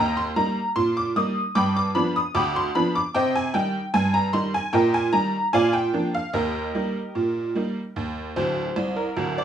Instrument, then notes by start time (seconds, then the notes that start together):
honky-tonk piano
Already playing: D#2 D#5 G5 A#5
0.17 C6
0.36 G3 A#3 D#4 A#5
0.76 A#2 C6
0.97 D6
1.16 G3 A#3 D#4 D#6
1.55 G2 G5 B5 D6
1.76 D6
1.95 F3 B3 D4 B5
2.16 D#6
2.35 D2 G5 B5 D6
2.56 C6
2.75 F3 B3 D4 B5
2.95 D6
3.15 C3 C5 D#5 G5
3.35 G#5
3.54 D#3 G3 D#4 G5
3.94 G2 G#5
4.14 A#5
4.33 D#3 G3 D#4 C6
4.54 G#5
4.73 A#2 A#4 D#5 G5
4.94 G#5
5.13 D#3 G3 D#4 A#5
5.53 A#2 D5 F5 G#5
5.73 G5
5.93 F3 A#3 D4
6.15 F5
6.33 D#2 G4 A#4 D#5
6.75 G3 A#3 D#4
7.15 A#2
7.55 G3 A#3 D#4
7.96 D#2
8.36 D1 D2 C5
8.76 C2
8.96 A#4
9.16 D1 D2
9.38 D5